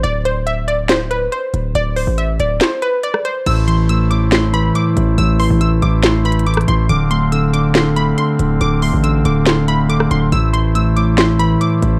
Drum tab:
CC |------------------------------------------------|------------------------------------------------|x-----------------------------------------------|------------------------------------------------|
HH |x-----x-----x-----x-----x-----x-----x-----x-----|x-----o-----x-----x-----x-----x-----x-----x-----|x-----x-----x-----x-----x-----x-----x-----x-----|x-----o-----x-----x-----x-----x-x-x-x-x-x-x-----|
SD |------------------------o-----------------------|------------------------o--------------r--------|------------------------o-----------------------|------------------------o--------------r--------|

CC |------------------------------------------------|------------------------------------------------|------------------------------------------------|
HH |x-----x-----x-----x-----x-----x-----x-----x-----|x-----o-----x-----x-----x-----x-----x-----x-----|x-----x-----x-----x-----x-----x-----x-----x-----|
SD |------------------------o-----------------------|------------------------o--------------r--------|------------------------o-----------------------|